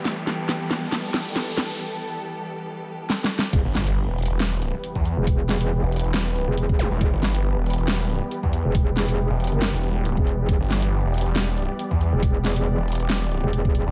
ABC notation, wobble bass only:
X:1
M:4/4
L:1/16
Q:"Swing 16ths" 1/4=138
K:Em
V:1 name="Wobble bass" clef=bass
z16 | z16 | E,,, z12 z2 E,,,- | E,,,4- E,,, z6 E,,,4 z |
E,,, z12 z2 E,,,- | E,,,4- E,,, z2 F,,,2 z4 E,,,3 | E,,, z12 z2 E,,,- | E,,,4- E,,, z6 E,,,4 z |]